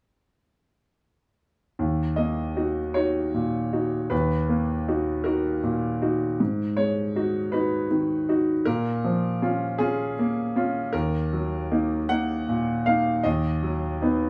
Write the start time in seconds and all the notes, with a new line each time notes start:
1.79 D#2
2.16 A#3 D#5
2.57 D#4 F#4
2.94 D#4 F#4 C#5
3.34 A#2
3.73 D#4 F#4
4.10 D#2 B4
4.49 A#3
4.88 D#4 F#4
5.24 D#4 F#4 A#4
5.63 A#2
6.02 D#4 F#4
6.40 G#2
6.77 G#3 C#5
7.16 D#4 F#4
7.52 D#4 F#4 B4
7.91 D#3
8.29 D#4 F#4
8.65 A#2 A#4
9.04 F3
9.42 C#4 F4
9.78 C#4 F4 G#4
10.19 A#3
10.56 C#4 F4
10.93 D#2 A#4
11.33 F#3
11.71 A#3 D#4
12.09 A#3 D#4 F#5
12.49 A#2
12.86 A#3 D#4 F5
13.23 D#2 D#5
13.63 F#3
14.02 B3 D#4